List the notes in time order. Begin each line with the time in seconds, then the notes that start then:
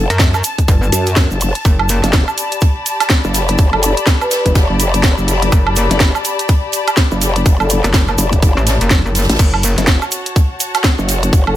Already playing: A5
0.10 F#2, closed hi-hat, shaker
0.19 kick, snare, closed hi-hat, shaker
0.34 high woodblock, shaker
0.44 closed hi-hat, open hi-hat, shaker
0.58 kick, closed hi-hat, shaker
0.68 G1, kick, closed hi-hat, shaker
0.83 shaker
0.92 F#2, closed hi-hat, open hi-hat, shaker
1.06 closed hi-hat, shaker
1.16 kick, snare, closed hi-hat, shaker
1.31 F#1, shaker
1.41 open hi-hat, shaker
1.54 closed hi-hat, shaker
1.65 F#1 G4, kick, closed hi-hat, shaker
1.79 D5, high woodblock
1.89 closed hi-hat, open hi-hat, shaker
2.03 F#1, snare, closed hi-hat, shaker
2.13 kick, snare, closed hi-hat, shaker
2.22 B5
2.28 high woodblock, shaker
2.38 closed hi-hat, open hi-hat, shaker
2.52 closed hi-hat, shaker
2.61 kick, closed hi-hat, shaker
2.86 closed hi-hat, open hi-hat, shaker
3.00 snare, closed hi-hat, high woodblock, shaker
3.10 kick, snare, closed hi-hat, shaker
3.24 F#1, shaker
3.34 snare, closed hi-hat, open hi-hat, shaker
3.48 closed hi-hat, shaker
3.58 F#1, kick, closed hi-hat, shaker
3.73 F#1 A4, high woodblock
3.83 closed hi-hat, open hi-hat, shaker
3.97 closed hi-hat, shaker
4.07 kick, snare, closed hi-hat, shaker
4.21 B4, high woodblock, shaker
4.31 B4, snare, closed hi-hat, open hi-hat, shaker
4.46 F#1, kick, closed hi-hat, shaker
4.55 kick, snare, closed hi-hat, shaker
4.70 F#1
4.79 closed hi-hat, open hi-hat, shaker
4.94 closed hi-hat, shaker
5.03 kick, snare, closed hi-hat, shaker
5.18 F#1, shaker
5.28 open hi-hat, shaker
5.42 closed hi-hat, shaker
5.52 F#1, kick, closed hi-hat, shaker
5.67 high woodblock
5.76 closed hi-hat, open hi-hat, shaker
5.90 F#1, snare, closed hi-hat, shaker
6.00 kick, snare, closed hi-hat, shaker
6.15 high woodblock, shaker
6.25 closed hi-hat, open hi-hat, shaker
6.39 closed hi-hat, shaker
6.49 kick, closed hi-hat, shaker
6.72 closed hi-hat, open hi-hat, shaker
6.87 closed hi-hat, high woodblock, shaker
6.97 kick, snare, closed hi-hat, shaker
7.11 F#1, shaker
7.21 snare, closed hi-hat, open hi-hat, shaker
7.36 closed hi-hat, shaker
7.46 F#1, kick, closed hi-hat, shaker
7.60 F#1 A4, high woodblock, shaker
7.70 closed hi-hat, open hi-hat, shaker
7.84 F#1, snare, closed hi-hat, shaker
7.94 kick, snare, closed hi-hat, shaker
8.07 high woodblock, shaker
8.18 F#1, closed hi-hat, open hi-hat, shaker
8.32 kick, closed hi-hat, shaker
8.42 kick, closed hi-hat, shaker
8.57 A1, shaker
8.67 snare, closed hi-hat, open hi-hat, shaker
8.81 F#1, closed hi-hat, shaker
8.90 kick, snare, closed hi-hat, shaker
9.05 F#1, shaker
9.15 snare, closed hi-hat, open hi-hat, shaker
9.22 snare, closed hi-hat
9.29 A1, snare, closed hi-hat, shaker
9.35 snare, closed hi-hat
9.39 F#1 F#4, kick, closed hi-hat, crash, shaker
9.54 high woodblock
9.63 closed hi-hat, open hi-hat, shaker
9.73 C#5
9.77 F#1, snare, closed hi-hat, shaker
9.85 F#5, kick, snare, closed hi-hat, shaker
10.02 high woodblock, shaker
10.12 closed hi-hat, open hi-hat, shaker
10.26 closed hi-hat, shaker
10.36 kick, closed hi-hat, shaker
10.60 closed hi-hat, open hi-hat, shaker
10.74 snare, closed hi-hat, high woodblock, shaker
10.84 kick, snare, closed hi-hat, shaker
10.99 F#1, shaker
11.09 snare, closed hi-hat, open hi-hat, shaker
11.23 closed hi-hat, shaker
11.33 F#1, kick, closed hi-hat, shaker
11.47 F#1 A4, high woodblock